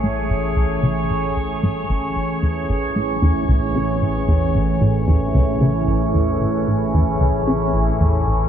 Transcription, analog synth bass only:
X:1
M:4/4
L:1/8
Q:1/4=113
K:A
V:1 name="Analog synth bass" clef=bass
A,, A,,, C,, C, A,,, C,, G,, A,,, | A,,, E,, A,,, A,, E,, C,, C, A,,, | E,, A,,, A,, E,, C,, C, A,,, E,, | A,,, A,, E,, C,, C, A,,, E,, A,,, |]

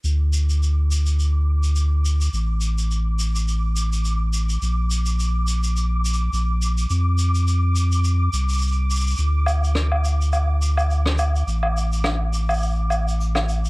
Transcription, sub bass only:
X:1
M:4/4
L:1/8
Q:"Swing 16ths" 1/4=105
K:Aphr
V:1 name="Sub bass" clef=bass
D,,8 | A,,,8 | B,,,6 B,,,2 | F,,4- F,, C,,3 |
D,,8 | A,,,8 |]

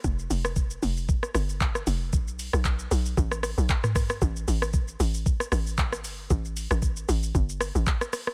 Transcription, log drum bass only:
X:1
M:4/4
L:1/16
Q:"Swing 16ths" 1/4=115
K:G
V:1 name="Log drum bass" clef=bass
=F,,,2 F,,,4 F,,,3 z G,,,4 F,,,2 | B,,,3 B,,,3 B,,,2 A,,,3 B,,, z4 | A,,,2 A,,,4 A,,,3 z A,,,4 G,,,2 | A,,,3 A,,,3 A,,,2 G,,,3 A,,, z4 |]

